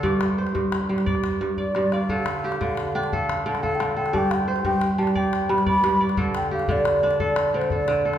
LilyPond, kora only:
<<
  \new Staff \with { instrumentName = "Kora" } { \time 12/8 \key d \minor \tempo 4. = 117 <a' d''>4 c''4. r8 d''4. d''4 d''8 | a'4 g'4. r8 a'4. a'4 a'8 | d''4 c''4. r8 d''4. d''4 d''8 | a'4 g'4. r8 a'4. a'4 a'8 | }
  \new Staff \with { instrumentName = "Kora" } { \clef bass \time 12/8 \key d \minor g,4 r8 g,4 g4 r8 g,4 g,4 | d4 r8 d4 d'4 r8 d4 d4 | g,4 r8 g,4 g4 r8 g,4 g,4 | d4 r8 d4 d'4 r8 d4 d4 | }
>>